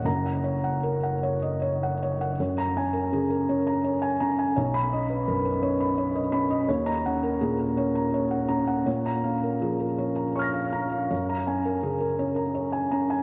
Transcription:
0.04 F#1 F#2 A#5
0.26 F#5
0.44 C#5
0.64 F#5
0.83 A#4
1.03 F#5
1.23 C#5
1.42 D#5
1.62 C#5
1.83 F#5
2.03 C#5
2.21 F#5
2.40 F#2 C#5
2.58 A#5
2.77 C#4 G#5
2.93 A#4
3.12 C#3 G#4
3.30 A#4
3.49 C#4 C#5
3.67 A#5
3.84 C#5
4.02 G#5
4.20 C#4 A#5
4.39 G#5
4.56 B1 C#5
4.74 B5
4.93 C#4 D#5
5.10 B4
5.28 F#2 A#4
5.45 B4
5.62 C#4 C#5
5.80 B5
5.98 C#5
6.15 D#5
6.32 C#4 B5
6.50 D#5
6.68 D#2 C#5
6.86 A#5
7.06 C#4 F#5
7.23 A#4
7.41 A#2 G#4
7.59 A#4
7.77 C#4 C#5
7.95 A#5
8.14 C#5
8.31 F#5
8.49 C#4 A#5
8.67 F#5
8.86 A#2 C#5
9.06 A#5
9.24 C#4 F5
9.43 A#4
9.62 F3 G#4
9.80 A#4
9.98 C#4 C#5
10.16 A#5
10.36 C#5 C#6 F6
10.42 A#6
10.54 F5
10.73 C#4 A#5
10.92 F5
11.11 F#2 C#5
11.30 A#5
11.47 C#4 G#5
11.66 A#4
11.83 C#3 G#4
12.00 A#4
12.19 C#4 C#5
12.36 A#5
12.55 C#5
12.72 G#5
12.91 C#4 A#5
13.10 G#5

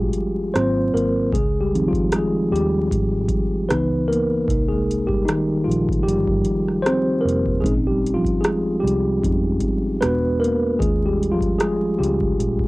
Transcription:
Already playing: A#1 F3 G3 G#3 C#4 F4 F#4 G4 G#4
0.13 closed hi-hat
0.54 G#1 F#3 A#3 C4 F4 C5, cross-stick, closed hi-hat
0.94 G#1 A#3 A#4, closed hi-hat
1.33 C#2 G#3 G#4, kick, closed hi-hat
1.61 G3 G4
1.74 D#3 F3 C4 D#4, closed hi-hat
1.88 F3 F4
1.93 kick, closed hi-hat
2.12 G#3 G#4, cross-stick, closed hi-hat
2.52 D#2 G3 G4
2.56 closed hi-hat
2.91 G#1, kick, closed hi-hat
3.29 kick, closed hi-hat
3.69 C#2 E3 B3 D#4 B4, cross-stick, closed hi-hat
4.08 A#3 A#4
4.13 closed hi-hat
4.48 C2 A#3 D#4, kick, closed hi-hat
4.69 G#3 G#4
4.91 closed hi-hat
5.07 G3 G4, kick
5.25 D#3 D#4, cross-stick, closed hi-hat
5.64 A#1 F3 F4
5.71 closed hi-hat
5.89 kick, closed hi-hat
6.03 G1 G3 G4
6.08 closed hi-hat
6.27 kick
6.45 closed hi-hat
6.68 cross-stick
6.82 C4 C5
6.86 cross-stick, closed hi-hat
7.21 F1 A#3 A#4
7.28 closed hi-hat
7.46 kick
7.60 G#3 C4 C#4 D#4 G#4, kick
7.65 A#1, closed hi-hat
7.87 G3 G4
8.06 closed hi-hat
8.14 F3 F4
8.25 kick, closed hi-hat
8.41 G#3 G#4, cross-stick, closed hi-hat
8.80 C2 G3 G4
8.87 closed hi-hat
9.22 F2 G#3 C4 C#4 D#4, kick, closed hi-hat
9.60 kick, closed hi-hat
10.01 E1 G#3 B3 D4 F#4 B4, cross-stick, closed hi-hat
10.40 A#3 A#4
10.44 closed hi-hat
10.79 D#2 G#3 C#4 F4 G#4, kick, closed hi-hat
11.06 G3 G4
11.23 closed hi-hat
11.31 F3 F4
11.41 kick, closed hi-hat
11.59 G#3 G#4, cross-stick, closed hi-hat
11.98 C#2 G3 G#3 C#4 F4 G4
12.03 closed hi-hat
12.21 kick
12.39 A#1, closed hi-hat
12.59 kick

